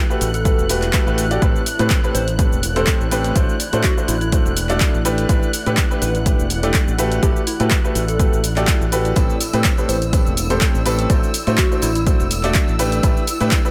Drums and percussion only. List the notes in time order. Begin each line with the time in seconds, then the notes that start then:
0.10 shaker
0.21 open hi-hat, shaker
0.34 closed hi-hat, shaker
0.45 kick, closed hi-hat, shaker
0.59 shaker
0.69 open hi-hat, shaker
0.82 clap, closed hi-hat, shaker
0.93 kick, clap, closed hi-hat, shaker
1.07 shaker
1.18 open hi-hat, shaker
1.31 closed hi-hat, shaker
1.42 kick, closed hi-hat, shaker
1.56 shaker
1.66 open hi-hat, shaker
1.79 closed hi-hat, shaker
1.90 kick, clap, closed hi-hat, shaker
2.04 shaker
2.15 open hi-hat, shaker
2.28 closed hi-hat, shaker
2.39 kick, closed hi-hat, shaker
2.52 shaker
2.63 open hi-hat, shaker
2.76 closed hi-hat, shaker
2.87 kick, clap, closed hi-hat, shaker
3.01 shaker
3.11 open hi-hat, shaker
3.24 closed hi-hat, shaker
3.36 kick, closed hi-hat, shaker
3.49 shaker
3.60 open hi-hat, shaker
3.73 closed hi-hat, shaker
3.84 kick, clap, closed hi-hat, shaker
3.98 shaker
4.08 open hi-hat, shaker
4.21 closed hi-hat, shaker
4.32 kick, closed hi-hat, shaker
4.46 shaker
4.57 open hi-hat, shaker
4.69 clap, closed hi-hat, shaker
4.80 kick, clap, closed hi-hat, shaker
4.94 shaker
5.05 open hi-hat, shaker
5.18 closed hi-hat, shaker
5.29 kick, closed hi-hat, shaker
5.43 shaker
5.53 open hi-hat, shaker
5.66 closed hi-hat, shaker
5.77 kick, clap, closed hi-hat, shaker
5.91 shaker
6.02 open hi-hat, shaker
6.15 closed hi-hat, shaker
6.26 kick, closed hi-hat, shaker
6.40 shaker
6.50 open hi-hat, shaker
6.63 closed hi-hat, shaker
6.74 kick, clap, closed hi-hat, shaker
6.88 shaker
6.99 open hi-hat, shaker
7.12 closed hi-hat, shaker
7.23 kick, closed hi-hat, shaker
7.36 shaker
7.47 open hi-hat, shaker
7.60 closed hi-hat, shaker
7.71 kick, clap, closed hi-hat, shaker
7.85 shaker
7.95 open hi-hat, shaker
8.08 closed hi-hat, shaker
8.19 kick, closed hi-hat, shaker
8.33 shaker
8.44 open hi-hat, shaker
8.56 clap, closed hi-hat, shaker
8.67 kick, clap, closed hi-hat, shaker
8.81 shaker
8.92 open hi-hat, shaker
9.05 closed hi-hat, shaker
9.16 kick, closed hi-hat, tambourine, shaker
9.29 tambourine, shaker
9.40 open hi-hat, tambourine, shaker
9.53 closed hi-hat, tambourine, shaker
9.64 kick, clap, closed hi-hat, tambourine, shaker
9.77 tambourine, shaker
9.89 open hi-hat, tambourine, shaker
10.02 closed hi-hat, tambourine, shaker
10.13 kick, closed hi-hat, tambourine, shaker
10.26 tambourine, shaker
10.37 open hi-hat, tambourine, shaker
10.50 closed hi-hat, tambourine, shaker
10.61 kick, clap, closed hi-hat, shaker
10.74 tambourine, shaker
10.86 open hi-hat, tambourine, shaker
10.99 closed hi-hat, tambourine, shaker
11.10 kick, closed hi-hat, tambourine, shaker
11.23 tambourine, shaker
11.34 open hi-hat, tambourine, shaker
11.47 closed hi-hat, tambourine, shaker
11.58 kick, clap, closed hi-hat, tambourine, shaker
11.72 tambourine, shaker
11.82 open hi-hat, tambourine, shaker
11.95 closed hi-hat, tambourine, shaker
12.07 kick, closed hi-hat, tambourine, shaker
12.20 tambourine, shaker
12.31 open hi-hat, tambourine, shaker
12.43 clap, closed hi-hat, tambourine, shaker
12.54 kick, clap, closed hi-hat, tambourine, shaker
12.68 tambourine, shaker
12.79 open hi-hat, tambourine, shaker
12.92 closed hi-hat, tambourine, shaker
13.03 kick, closed hi-hat, tambourine, shaker
13.17 tambourine, shaker
13.27 open hi-hat, tambourine, shaker
13.41 closed hi-hat, tambourine, shaker
13.51 kick, clap, closed hi-hat, tambourine, shaker
13.65 tambourine, shaker